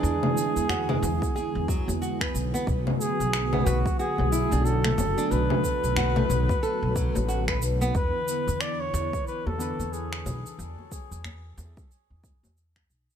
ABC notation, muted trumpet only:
X:1
M:4/4
L:1/16
Q:"Swing 16ths" 1/4=91
K:Emix
V:1 name="Muted trumpet"
G8- G2 z6 | z2 G4 F2 G4 A4 | B12 z4 | B4 d c3 B A3 G4 |
z16 |]